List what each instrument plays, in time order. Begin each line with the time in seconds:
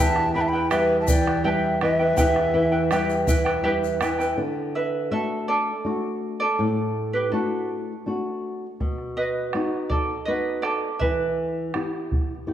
Already playing: charango E4 G4 B4 E5 G5
0.00 nylon-string guitar E2, quena E5 A5
0.16 bombo rim
0.34 nylon-string guitar E3, charango E4 B4 E5 G5, quena G5 B5
0.41 quena E5 A5
0.48 quena G5 B5
0.53 charango E4 B4 G5
0.70 nylon-string guitar G3, charango E4 G4 B4 E5 G5, quena B4 E5, bombo rim, shaker
0.90 bombo rim
1.01 quena E5 A5
1.07 nylon-string guitar E3, charango E4 B4 E5 G5, quena D5 G5, bombo low, shaker
1.25 charango E4 B4 G5, bombo rim
1.44 nylon-string guitar G3, charango E4 G4 B4 E5 G5, quena E5 A5
1.50 quena G5
1.81 nylon-string guitar E3, charango E4 B4 E5 G5, quena B4 D#5, bombo rim
1.97 charango E4 B4 G5, quena E5
2.17 nylon-string guitar E2, charango E4 G4 B4 E5 G5, bombo rim, bombo low, shaker
2.36 bombo rim
2.53 nylon-string guitar E3, charango E4 B4 E5 G5, bombo rim
2.72 charango E4 B4 G5, bombo rim
2.91 nylon-string guitar G3, charango E4 G4 B4 E5 G5, bombo rim, shaker
3.09 shaker
3.27 nylon-string guitar E3, charango E4 B4 E5 G5, bombo rim, bombo low, shaker
3.45 charango E4 B4 G5, bombo rim
3.63 nylon-string guitar G3, charango E4 G4 B4 E5 G5, bombo rim
3.84 shaker
4.01 nylon-string guitar E3, charango E4 B4 E5 G5, bombo rim, shaker
4.19 charango E4 B4 G5, shaker
4.37 nylon-string guitar D3
4.75 charango B4 E5
5.11 nylon-string guitar A3 D4 F#4, charango A4 E5
5.48 charango A4 D5
5.85 nylon-string guitar A3 D4 F#4
6.40 charango A4 D5
6.59 nylon-string guitar A2
7.13 charango G4 B4
7.32 nylon-string guitar A3 D4 F#4, charango F#4 A4
8.06 nylon-string guitar A3 D4 F#4
8.80 nylon-string guitar B2, bombo rim, bombo low
8.98 bombo rim
9.17 charango B4 D#5
9.53 nylon-string guitar B3 D#4 F#4, bombo rim
9.90 charango A4 D5, bombo rim, bombo low
10.25 nylon-string guitar B3 D#4 F#4, charango B4 D#5, bombo rim
10.62 charango A4 D5, bombo rim
10.99 nylon-string guitar E3, charango B4 E5, bombo low
11.74 nylon-string guitar B3 E4 G4, bombo rim
11.93 bombo rim
12.12 bombo rim, bombo low
12.47 nylon-string guitar B3 E4 G4, bombo rim